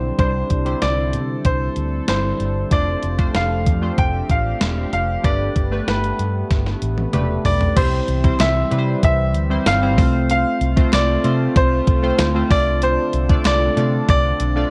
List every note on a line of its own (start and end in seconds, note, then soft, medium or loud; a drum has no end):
0.00 0.10 B1 medium
0.00 2.68 D3 medium
0.00 0.18 G3 medium
0.00 2.68 C4 medium
0.00 0.19 D4 medium
0.00 5.20 D4 medium
0.00 0.19 E4 medium
0.00 2.68 E4 medium
0.00 0.15 G4 medium
0.00 0.18 C5 medium
0.00 0.20 C5 medium
0.18 0.42 C2 loud
0.18 0.60 G3 medium
0.18 0.60 D4 medium
0.18 0.61 E4 medium
0.18 5.20 A4 medium
0.18 0.84 C5 medium
0.18 0.61 C5 medium
0.18 kick loud
0.18 closed hi-hat medium
0.50 0.73 C2 medium
0.50 kick medium
0.50 closed hi-hat medium
0.65 1.77 G3 medium
0.65 1.77 D4 medium
0.65 1.77 E4 medium
0.65 1.77 C5 medium
0.65 closed hi-hat medium
0.82 1.16 C2 medium
0.82 1.41 D5 medium
0.82 snare medium
0.82 closed hi-hat medium
1.13 1.37 C3 medium
1.13 closed hi-hat medium
1.45 1.68 C2 medium
1.45 2.07 C5 medium
1.45 kick loud
1.45 closed hi-hat medium
1.76 2.00 D2 medium
1.76 closed hi-hat medium
2.08 2.31 G1 medium
2.08 2.64 G3 medium
2.08 2.64 D4 medium
2.08 2.64 E4 medium
2.08 2.74 C5 medium
2.08 2.64 C5 medium
2.08 snare loud
2.08 closed hi-hat medium
2.40 2.63 G1 medium
2.40 closed hi-hat medium
2.71 2.94 F1 medium
2.71 5.22 F3 medium
2.71 3.13 A3 medium
2.71 5.22 C4 medium
2.71 3.13 D4 medium
2.71 3.13 F4 medium
2.71 7.73 G4 medium
2.71 3.13 C5 medium
2.71 3.37 D5 medium
2.71 kick loud
2.71 closed hi-hat medium
3.03 3.26 F1 medium
3.03 closed hi-hat medium
3.18 3.74 A3 medium
3.18 3.74 D4 medium
3.18 3.74 F4 medium
3.18 3.75 C5 medium
3.18 kick medium
3.18 closed hi-hat medium
3.35 3.68 F1 loud
3.35 4.00 F5 medium
3.35 snare loud
3.35 closed hi-hat medium
3.66 3.89 F2 medium
3.66 kick medium
3.66 closed hi-hat medium
3.81 4.93 A3 medium
3.81 4.93 D4 medium
3.81 4.93 F4 medium
3.81 4.93 C5 medium
3.98 4.21 F1 medium
3.98 4.31 G5 medium
3.98 kick loud
3.98 closed hi-hat medium
4.29 4.52 A1 medium
4.29 4.92 F5 medium
4.29 kick medium
4.29 closed hi-hat medium
4.61 4.84 E1 medium
4.61 snare loud
4.61 closed hi-hat medium
4.93 5.15 F1 medium
4.93 5.25 F5 medium
4.93 closed hi-hat medium
5.23 5.47 G1 loud
5.23 5.65 A3 medium
5.23 7.75 A3 medium
5.23 7.75 B3 medium
5.23 5.65 D4 medium
5.23 5.66 G4 medium
5.23 5.66 B4 medium
5.23 5.90 D5 medium
5.23 kick loud
5.23 closed hi-hat medium
5.56 5.79 G1 medium
5.56 kick medium
5.56 closed hi-hat medium
5.71 6.82 A3 medium
5.71 6.82 D4 medium
5.71 6.83 G4 medium
5.71 6.83 B4 medium
5.87 6.10 G1 medium
5.87 7.42 B4 medium
5.87 snare loud
5.87 closed hi-hat medium
6.04 closed hi-hat soft
6.19 6.42 G2 medium
6.19 closed hi-hat medium
6.50 6.73 G1 medium
6.50 kick loud
6.50 snare medium
6.50 closed hi-hat medium
6.66 snare soft
6.82 7.05 A1 medium
6.82 closed hi-hat medium
6.98 high tom medium
7.13 7.37 E1 medium
7.13 7.69 A3 medium
7.13 7.69 D4 medium
7.13 7.69 G4 medium
7.13 7.69 B4 medium
7.13 closed hi-hat medium
7.13 mid tom medium
7.45 7.68 B1 medium
7.45 7.78 D5 medium
7.45 floor tom medium
7.45 open hi-hat medium
7.61 floor tom medium
7.76 8.00 C2 loud
7.76 9.96 E3 medium
7.76 8.18 G3 medium
7.76 9.96 G3 medium
7.76 8.18 C4 medium
7.76 14.70 C4 medium
7.76 8.18 E4 medium
7.76 8.42 C5 loud
7.76 8.19 C5 medium
7.76 kick loud
7.76 closed hi-hat medium
7.76 crash medium
8.08 8.31 C2 loud
8.08 closed hi-hat medium
8.24 8.66 G3 medium
8.24 8.66 C4 medium
8.24 8.66 E4 medium
8.24 8.66 C5 medium
8.24 kick medium
8.24 closed hi-hat medium
8.40 8.63 C2 loud
8.40 9.00 E5 loud
8.40 snare loud
8.40 clap medium
8.40 closed hi-hat medium
8.40 tambourine medium
8.71 8.94 C3 loud
8.71 9.40 G3 medium
8.71 9.41 C4 medium
8.71 9.41 E4 medium
8.71 8.78 B4 medium
8.71 closed hi-hat medium
8.79 9.44 C5 medium
9.03 9.35 C2 loud
9.03 9.69 E5 loud
9.03 kick loud
9.03 closed hi-hat medium
9.35 9.58 D2 medium
9.35 closed hi-hat medium
9.50 9.78 G3 medium
9.50 9.78 C4 medium
9.50 9.78 E4 medium
9.50 9.79 C5 medium
9.66 9.98 G1 medium
9.66 10.29 F5 loud
9.66 snare loud
9.66 clap medium
9.66 closed hi-hat medium
9.66 tambourine medium
9.82 9.98 G3 medium
9.82 9.96 C4 medium
9.82 9.98 E4 medium
9.82 9.97 C5 medium
9.97 10.44 C2 loud
9.97 10.67 A3 medium
9.97 12.48 A3 medium
9.97 10.67 C4 medium
9.97 10.67 F4 medium
9.97 14.70 F4 medium
9.97 10.67 C5 medium
9.97 kick loud
9.97 open hi-hat medium
10.30 10.89 F5 loud
10.30 closed hi-hat medium
10.61 10.84 C2 loud
10.61 closed hi-hat medium
10.76 11.18 A3 medium
10.76 11.18 C4 medium
10.76 11.19 F4 medium
10.76 11.19 C5 medium
10.76 kick medium
10.76 closed hi-hat medium
10.93 11.15 C2 loud
10.93 11.58 D5 loud
10.93 snare loud
10.93 clap medium
10.93 closed hi-hat medium
10.93 tambourine medium
11.24 11.47 C3 loud
11.24 11.93 A3 medium
11.24 11.94 C4 medium
11.24 11.94 F4 medium
11.24 11.94 C5 medium
11.24 closed hi-hat medium
11.56 11.79 C2 loud
11.56 12.47 C5 medium
11.56 kick loud
11.56 closed hi-hat medium
11.87 12.10 C2 medium
11.87 kick loud
11.87 closed hi-hat medium
12.03 12.31 A3 medium
12.03 12.31 C4 medium
12.03 12.31 F4 medium
12.03 12.31 C5 medium
12.19 12.42 D2 medium
12.19 snare loud
12.19 clap medium
12.19 closed hi-hat medium
12.19 tambourine medium
12.35 12.49 A3 medium
12.35 12.51 C4 medium
12.35 12.50 F4 medium
12.35 12.51 C5 medium
12.50 12.96 C2 medium
12.50 14.70 D3 medium
12.50 13.20 A3 medium
12.50 14.70 D4 medium
12.50 13.20 D4 medium
12.50 13.20 F4 medium
12.50 14.70 A4 medium
12.50 13.20 D5 medium
12.50 12.83 D5 loud
12.50 kick loud
12.50 open hi-hat medium
12.82 13.48 C5 loud
12.82 closed hi-hat medium
13.13 13.36 C2 medium
13.13 closed hi-hat medium
13.29 13.71 A3 medium
13.29 13.71 D4 medium
13.29 13.71 F4 medium
13.29 13.71 D5 medium
13.29 kick medium
13.29 closed hi-hat medium
13.45 13.68 C2 loud
13.45 14.08 D5 medium
13.45 snare loud
13.45 clap medium
13.45 closed hi-hat medium
13.45 tambourine medium
13.77 13.99 C3 loud
13.77 14.46 A3 medium
13.77 14.46 D4 medium
13.77 14.46 F4 medium
13.77 14.47 D5 medium
13.77 closed hi-hat medium
14.08 14.31 C2 loud
14.08 14.68 D5 loud
14.08 kick loud
14.08 closed hi-hat medium
14.40 14.63 B1 medium
14.40 closed hi-hat medium
14.56 14.70 A3 medium
14.56 14.70 D4 medium
14.56 14.70 F4 medium
14.56 14.70 D5 medium